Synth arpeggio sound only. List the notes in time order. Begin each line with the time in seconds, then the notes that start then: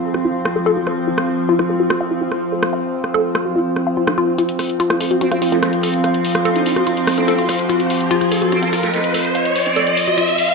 0.14 F#4
0.25 F4
0.56 A4
0.66 A4
0.76 F#4
0.87 C5
1.07 F4
1.49 F4
1.59 F4
1.70 A4
1.80 F#4
1.90 F#4
2.01 F5
2.11 F4
2.21 F4
2.52 A4
2.73 F5
3.14 A4
3.45 F#4
3.56 F4
3.87 F5
3.97 F4
4.07 D#4
4.18 F4
4.38 F4
4.80 F4
4.90 F4
5.00 A4
5.11 F#4
5.21 F#4
5.32 F5
5.42 F4
5.52 F4
5.83 A4
6.04 F5
6.45 A4
6.76 F#4
6.87 F4
7.18 A4
7.28 A4
7.38 F#4
7.49 C5
7.69 F4
8.11 F4
8.21 F4
8.32 A4
8.42 F#4
8.52 F#4
8.63 F5
8.73 F4
8.83 F4
9.14 A4
9.35 F5
9.76 A4
10.07 F#4
10.18 F4
10.49 F5